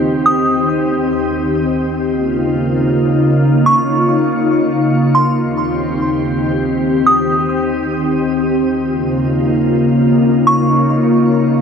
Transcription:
0.00 1.93 D#2 medium
0.00 1.93 D#3 medium
0.00 1.93 C4 medium
0.00 1.93 G4 medium
0.26 1.49 D#6 loud
1.96 5.33 C#3 medium
1.96 5.33 A#3 medium
1.96 5.33 D#4 medium
1.96 5.33 F4 medium
3.66 5.11 C#6 loud
5.15 5.35 C6 medium
5.36 8.73 D#2 medium
5.36 8.73 D#3 medium
5.36 8.73 C4 medium
5.36 8.73 G4 medium
7.07 8.30 D#6 loud
8.77 11.61 C#3 medium
8.77 11.61 A#3 medium
8.77 11.61 D#4 medium
8.77 11.61 F4 medium
10.47 11.61 C#6 loud

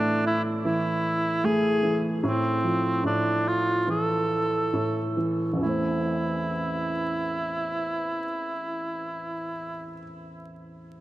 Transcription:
0.00 2.19 A2 medium
0.00 0.63 E3 soft
0.00 1.40 A3 soft
0.00 0.24 D4 medium
0.27 0.43 E4 medium
0.65 1.81 E3 soft
0.65 1.46 E4 medium
1.44 2.21 A3 soft
1.44 2.04 G#4 medium
1.83 2.22 E3 soft
2.24 3.03 A2 soft
2.24 3.02 C4 medium
2.64 4.26 F3 soft
3.04 4.69 A2 soft
3.04 3.49 D4 medium
3.48 3.89 F4 medium
3.87 5.15 E3 soft
3.87 5.14 A4 medium
4.74 5.59 A2 soft
5.17 5.59 E3 soft
5.53 9.85 A1 soft
5.57 9.89 E2 soft
5.57 9.93 E3 soft
5.63 9.97 A3 soft
5.63 9.95 E4 medium
5.69 10.01 C4 soft

